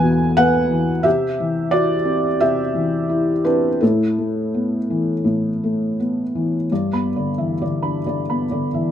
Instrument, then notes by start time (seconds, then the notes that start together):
felt piano
Already playing: E2 B2 E3 B3 A4 B4 F#5 G#5
0.03 B2
0.37 B3 B4 F#5
0.70 E3
1.03 C3 G4 E5
1.40 E3
1.71 E4 F#4 D5
2.05 C4
2.40 C3 G4 E5
2.75 E3
3.10 E4
3.45 C4 D4 B4
3.81 A2 E4 A4
4.18 A3
4.54 B3
4.90 E3
5.24 A2
5.64 A3
6.00 B3
6.35 E3
6.72 G2 D5
6.93 B3 B5
7.16 D3 D5
7.38 E3 E5
7.62 D3 D5
7.83 D4 B5
8.07 D3 D5
8.30 B3 B5
8.51 D3 D5
8.73 E3 E5